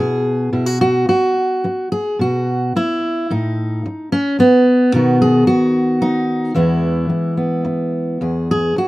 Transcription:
0.00 0.52 B2 medium
0.00 0.52 G#4 medium
0.53 1.08 B2 medium
0.53 0.66 E4 soft
0.66 0.80 F#4 soft
0.81 1.07 F#4 loud
1.08 1.91 F#4 medium
1.08 muted steel-string acoustic guitar stroke medium
1.64 muted steel-string acoustic guitar stroke medium
1.92 2.20 G#4 medium
2.19 2.75 B2 medium
2.19 2.76 F#4 medium
2.76 3.31 E4 medium
2.76 muted steel-string acoustic guitar stroke medium
3.30 3.85 A2 medium
3.30 4.12 D#4 medium
3.86 muted steel-string acoustic guitar stroke medium
4.12 4.39 C#4 loud
4.39 4.94 B3 medium
4.39 muted steel-string acoustic guitar stroke medium
4.93 5.46 B2 medium
4.93 6.52 D#3 soft
4.93 6.56 B3 soft
4.93 6.00 D#4 medium
4.93 5.21 F#4 soft
5.22 5.47 G#4 loud
5.47 6.55 F#4 medium
5.47 muted steel-string acoustic guitar stroke medium
6.02 6.55 D#4 medium
6.02 muted steel-string acoustic guitar stroke medium
6.54 7.08 E2 medium
6.54 8.17 E3 soft
6.54 8.17 G#3 soft
6.54 7.36 B3 soft
6.54 8.20 E4 medium
7.10 muted steel-string acoustic guitar stroke medium
7.37 8.88 B3 soft
7.65 muted steel-string acoustic guitar stroke medium
8.21 8.75 E2 medium
8.21 8.48 G#4 soft
8.51 8.77 G#4 medium
8.76 8.88 F#4 medium
8.76 muted steel-string acoustic guitar stroke medium

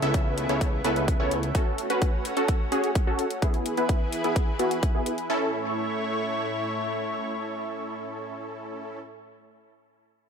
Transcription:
0.00 0.47 C#2 medium
0.00 1.53 C#3 medium
0.00 3.39 A3 medium
0.00 1.53 B3 medium
0.00 0.47 B3 medium
0.00 0.47 C#4 medium
0.00 1.53 E4 medium
0.00 0.47 E4 medium
0.00 0.47 A4 medium
0.00 0.47 E5 medium
0.00 closed hi-hat soft
0.14 kick loud
0.14 closed hi-hat medium
0.38 closed hi-hat medium
0.49 0.82 C#2 loud
0.49 0.68 B3 medium
0.49 0.68 C#4 medium
0.49 0.68 E4 medium
0.49 0.68 A4 medium
0.49 0.68 C#5 medium
0.49 closed hi-hat soft
0.61 kick loud
0.61 closed hi-hat medium
0.84 1.17 C#2 medium
0.84 1.03 B3 medium
0.84 1.03 C#4 medium
0.84 1.03 E4 medium
0.84 1.03 A4 medium
0.84 1.03 B4 loud
0.84 closed hi-hat medium
0.96 closed hi-hat soft
1.08 kick loud
1.08 closed hi-hat medium
1.20 1.52 C#2 medium
1.20 1.38 B3 medium
1.20 1.38 C#4 medium
1.20 1.38 E4 medium
1.20 1.38 A4 medium
1.20 1.38 C#5 loud
1.31 closed hi-hat medium
1.43 closed hi-hat soft
1.55 1.87 C#4 medium
1.55 3.41 C#4 medium
1.55 1.87 F#4 medium
1.55 3.41 F#4 medium
1.55 1.87 A4 medium
1.55 kick loud
1.55 closed hi-hat medium
1.78 closed hi-hat medium
1.90 2.34 C#4 medium
1.90 2.34 F#4 medium
1.90 2.34 B4 medium
1.90 closed hi-hat soft
2.02 kick loud
2.02 closed hi-hat medium
2.25 closed hi-hat medium
2.37 2.55 C#4 medium
2.37 2.55 F#4 medium
2.37 2.55 A4 loud
2.37 closed hi-hat soft
2.48 kick loud
2.48 closed hi-hat medium
2.72 2.90 C#4 medium
2.72 2.90 F#4 medium
2.72 2.90 G#4 loud
2.72 closed hi-hat medium
2.84 closed hi-hat soft
2.95 kick loud
2.95 closed hi-hat medium
3.07 3.26 C#4 medium
3.07 3.26 F#4 medium
3.07 3.26 A4 medium
3.19 closed hi-hat medium
3.30 closed hi-hat soft
3.42 5.28 E3 medium
3.42 3.75 B3 medium
3.42 5.28 E4 medium
3.42 3.75 E4 medium
3.42 5.28 G#4 medium
3.42 3.75 G#4 medium
3.42 5.28 B4 medium
3.42 kick loud
3.42 closed hi-hat medium
3.54 closed hi-hat soft
3.66 closed hi-hat medium
3.77 4.22 B3 medium
3.77 4.22 E4 medium
3.77 4.22 B4 medium
3.77 closed hi-hat soft
3.89 kick loud
3.89 closed hi-hat medium
4.13 closed hi-hat medium
4.24 4.43 B3 medium
4.24 4.43 E4 medium
4.24 4.43 G#4 medium
4.24 closed hi-hat soft
4.36 kick loud
4.36 closed hi-hat medium
4.59 4.78 B3 medium
4.59 4.78 E4 medium
4.59 4.78 F#4 loud
4.59 closed hi-hat medium
4.71 closed hi-hat soft
4.83 kick loud
4.83 closed hi-hat medium
4.95 5.13 B3 medium
4.95 5.13 E4 medium
4.95 5.13 G#4 medium
5.06 closed hi-hat medium
5.18 closed hi-hat soft
5.30 9.00 A2 medium
5.30 9.00 A3 medium
5.30 9.00 C#4 medium
5.30 9.00 E4 medium
5.30 9.00 A4 medium
5.30 9.00 C#5 medium

